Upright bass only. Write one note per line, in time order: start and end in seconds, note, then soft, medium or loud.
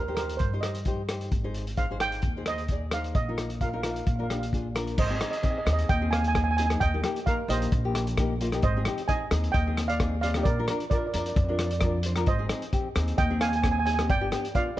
0.00 0.36 D#2 medium
0.40 1.28 G2 medium
1.32 2.19 G#1 medium
2.23 3.11 D#2 medium
3.15 4.03 A#1 medium
4.07 4.94 A#1 medium
4.98 5.19 G#1 medium
5.66 5.87 D#2 medium
5.89 6.77 D#2 medium
6.81 7.02 D#2 medium
7.48 7.69 A#1 medium
7.72 8.59 A#1 loud
8.63 8.84 G#1 medium
9.31 9.52 D#2 medium
9.54 10.41 D#2 loud
10.46 10.66 A#1 medium
11.14 11.34 F2 medium
11.36 12.23 F2 loud
12.27 12.48 G#1 medium
12.96 13.16 D#2 medium
13.18 14.05 D#2 loud
14.10 14.30 G1 medium